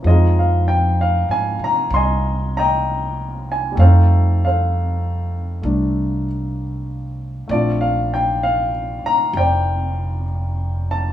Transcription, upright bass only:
X:1
M:4/4
L:1/8
Q:"Swing" 1/4=64
K:Fdor
V:1 name="Upright bass" clef=bass
F,,2- (3F,, A,, C, C,,4 | F,,4 C,,4 | B,,,3 z F,,,4 |]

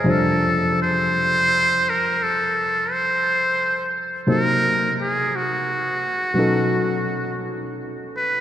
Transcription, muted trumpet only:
X:1
M:4/4
L:1/8
Q:"Swing" 1/4=57
K:Cmix
V:1 name="Muted trumpet"
A c2 B A c2 z | B _A _G4 z =B |]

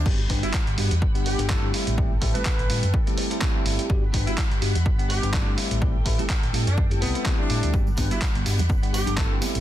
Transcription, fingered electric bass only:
X:1
M:4/4
L:1/16
Q:"Swing 16ths" 1/4=125
K:G
V:1 name="Fingered electric bass" clef=bass
G,,,2 G,,, z2 G,,, G,, E,, G,,,3 G,,,3 z A,,,- | A,,,2 A,,, z2 A,,, A,, F,, z6 G,,, z | G,,,2 G,,, z2 G,,, G,, E,, G,,,3 G,,,3 z A,,,- | A,,,2 A,,, z2 A,,, A,, F,,3 C,, z3 A,, D,, |
G,,,2 G,,, z2 G,,, G,, E,, G,,,3 G,,,3 z A,,, |]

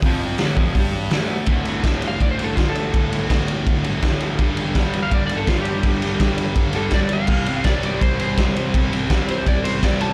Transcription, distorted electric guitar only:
X:1
M:4/4
L:1/8
Q:1/4=165
K:G
V:1 name="Distorted electric guitar" clef=bass
[=F,,=F,]2 [D,,D,] [F,,F,] [G,,G,]2 [D,,D,]2 | [D,,A,,D,] [A,,D,] [D,,A,,D,]3 [A,,D,] [D,,A,,D,] [A,,D,] | [D,,A,,D,] [A,,D,] [D,,A,,D,]3 [A,,D,] [D,,A,,D,] [A,,D,] | [G,,D,G,] [D,G,] [G,,D,G,]3 [D,G,] [G,,D,G,] [D,G,] |
[G,,D,G,] [D,G,] [G,,D,G,]3 [D,G,] [G,,D,G,] [D,G,] | [C,G,C] [G,C] [C,G,C]3 [G,C] [C,G,C] [G,C] | [C,G,C] [G,C] [C,G,C]3 [G,C] [C,G,C] [G,C] |]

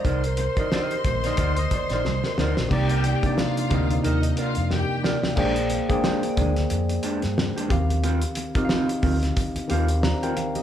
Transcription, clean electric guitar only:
X:1
M:4/4
L:1/16
Q:"Swing 16ths" 1/4=90
K:Cm
V:1 name="Clean electric guitar"
[EBd] z2 [EBd] [EBe] z2 [EBd] [EBd] z2 [EBd] z2 [EBd] z | z [EBd] z4 [EBd] z [EBe] z [EBd] z3 [EBd] z | [A,DG] z2 [A,DA] [A,DG] z [A,DA] z3 [A,DG] z2 [A,DG] z2 | [CFG] z2 [CFB] [CFG] z [CFB] z3 [CFG] z2 [CFG] z2 |]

